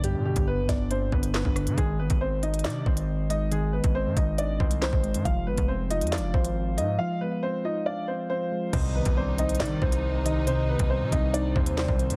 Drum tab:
CC |--------------------------------|--------------------------------|--------------------------------|--------------------------------|
HH |x-----x-----x---x-----x-----x-x-|x-----x-----x-xxxx----x-----x---|x-----x-----x---x-----x-----x-x-|x-----x-----x-xxxx----x-----x---|
CP |------------------------x-------|----------------x---------------|------------------------x-------|----------------x---------------|
SD |------------o-----------o---r---|----------------o---------------|------------------------o-------|----------------o---------------|
BD |------o-----o-------o-----o-----|o-----o-------------o-----------|------o-----o-------o-----o-----|o-----o-------------o-----------|

CC |--------------------------------|x-------------------------------|--------------------------------|
HH |--------------------------------|x-----x-----x-xxxx----x-----x---|x-----x-----x---x-----x-----x-x-|
CP |--------------------------------|----------------x---------------|------------------------x-------|
SD |--------------------------------|----------------o---------------|------------------------o-------|
BD |--------------------------------|o-----o-------------o-----------|------o-----o-------o-----o-----|